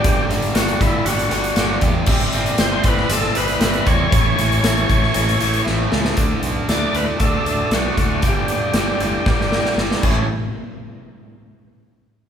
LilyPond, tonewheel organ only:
\new Staff \with { instrumentName = "Tonewheel organ" } { \time 4/4 \key d \major \tempo 4 = 117 g'8 r8 fis'8 e'8 fis'4. r8 | r4 c''8 b'8 a'8 b'8 b'8 cis''8~ | cis''2. r4 | r4 d''8 b'8 a'4 fis'4 |
g'2. r8 cis'8 | r1 | }